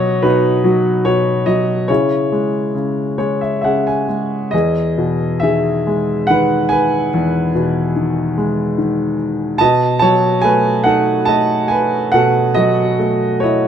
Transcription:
0.00 0.21 B2 medium
0.00 0.62 F#3 soft
0.00 0.22 F#4 medium
0.00 0.24 C#5 medium
0.00 1.46 D#5 medium
0.22 1.04 B2 soft
0.22 1.43 D#4 medium
0.22 1.43 F#4 soft
0.22 1.07 B4 medium
0.64 1.45 F#3 soft
1.05 1.87 B2 soft
1.05 1.48 C#5 medium
1.46 1.88 F#3 soft
1.46 1.86 D#5 medium
1.88 2.73 C#3 soft
1.88 4.05 E4 soft
1.88 3.62 G#4 soft
1.88 3.17 C#5 medium
2.32 3.17 G#3 soft
2.75 3.63 C#3 soft
3.18 4.07 G#3 soft
3.18 3.39 C#5 soft
3.41 3.60 E5 soft
3.61 4.51 C#3 soft
3.61 4.49 G#4 soft
3.61 4.55 E5 medium
3.61 3.85 F#5 soft
3.87 4.50 G#5 soft
4.08 4.52 G#3 soft
4.51 7.10 E2 soft
4.51 5.39 G#4 soft
4.51 5.44 D#5 medium
4.98 6.68 B2 soft
5.40 6.29 D#3 soft
5.40 6.26 G#4 medium
5.40 6.24 E5 medium
5.87 7.51 G#3 soft
6.27 7.92 D#3 soft
6.27 6.69 B4 medium
6.27 6.72 F#5 medium
6.69 7.51 B4 medium
6.69 7.49 G#5 medium
7.14 9.57 E2 medium
7.55 9.16 B2 soft
7.96 8.77 D#3 soft
8.37 9.57 G#3 soft
8.78 9.58 D#3 soft
9.58 12.10 B2 medium
9.58 9.99 D#5 medium
9.58 9.98 A5 medium
9.99 11.67 F#3 soft
9.99 10.41 C#5 medium
9.99 10.44 A5 medium
10.42 11.27 A3 soft
10.42 10.83 B4 medium
10.42 10.86 G#5 medium
10.84 12.53 D#4 medium
10.84 11.26 A4 medium
10.84 11.29 F#5 medium
11.25 12.96 A3 soft
11.25 11.68 D#5 medium
11.25 11.71 A5 medium
11.68 12.11 B4 medium
11.68 12.14 G#5 medium
12.12 13.68 B2 medium
12.12 12.54 A4 medium
12.12 12.53 F#5 medium
12.54 13.68 F#3 soft
12.54 13.41 F#4 medium
12.54 13.39 D#5 medium
12.99 13.68 A3 soft
13.40 13.68 E4 soft
13.40 13.68 C#5 medium
13.40 13.68 D#5 soft

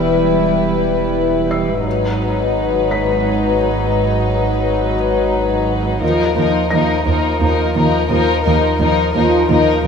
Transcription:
0.00 1.82 E1 soft
0.00 1.87 E1 medium
0.00 1.81 E2 soft
0.00 1.82 G3 soft
0.00 1.82 E4 soft
0.00 1.81 B4 soft
1.51 3.56 E6 soft
1.51 3.56 C7 soft
1.84 5.98 G#1 soft
1.84 6.03 G#1 medium
1.84 5.98 G#2 soft
1.84 5.98 F#3 soft
1.84 5.98 D#4 soft
1.84 5.98 B4 soft
2.91 4.95 B6 soft
6.01 6.09 D#2 soft
6.01 9.87 D#2 medium
6.01 6.35 F3 medium
6.01 6.36 D#4 soft
6.01 6.36 A#4 medium
6.36 6.44 D#2 soft
6.36 6.45 D#2 soft
6.36 6.71 F3 soft
6.36 6.71 D#4 soft
6.36 6.71 A#4 soft
6.71 6.80 D#2 medium
6.71 7.05 F3 soft
6.71 7.06 D#4 soft
6.71 7.05 A#4 soft
6.71 8.75 A#6 soft
7.06 7.14 D#2 medium
7.06 7.15 D#2 medium
7.06 7.39 F3 soft
7.06 7.40 D#4 soft
7.06 7.40 A#4 soft
7.41 7.49 D#2 medium
7.41 7.75 F3 soft
7.41 7.75 D#4 soft
7.41 7.74 A#4 soft
7.75 7.83 D#2 medium
7.75 7.84 D#2 medium
7.75 8.08 F3 soft
7.75 8.10 D#4 soft
7.75 8.08 A#4 medium
8.09 8.18 D#2 medium
8.09 8.44 F3 medium
8.09 8.44 D#4 medium
8.09 8.43 A#4 medium
8.44 8.53 D#2 medium
8.44 8.54 D#2 medium
8.44 8.78 F3 soft
8.44 8.78 D#4 soft
8.44 8.79 A#4 medium
8.79 8.88 D#2 medium
8.79 8.89 D#2 medium
8.79 9.14 F3 medium
8.79 9.14 D#4 medium
8.79 9.14 A#4 medium
9.14 9.22 D#2 medium
9.14 9.23 D#2 medium
9.14 9.49 F3 medium
9.14 9.49 D#4 soft
9.14 9.47 A#4 soft
9.48 9.57 D#2 medium
9.48 9.58 D#2 medium
9.48 9.84 F3 soft
9.48 9.83 D#4 medium
9.48 9.83 A#4 medium
9.84 9.87 D#2 medium

